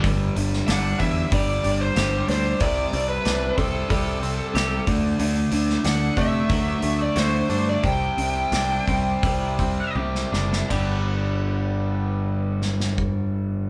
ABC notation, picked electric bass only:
X:1
M:4/4
L:1/8
Q:1/4=91
K:G
V:1 name="Picked electric bass" clef=bass
G,,, G,,, G,,, E,, G,,, G,,, G,,, D,, | C,, C,, C,, C,, C,,2 C,, D,, | D,, D,, D,, C, D,, D,, D,, G,, | C,, C,, C,, C,, C,,2 C,, F,,, |
G,,,8 |]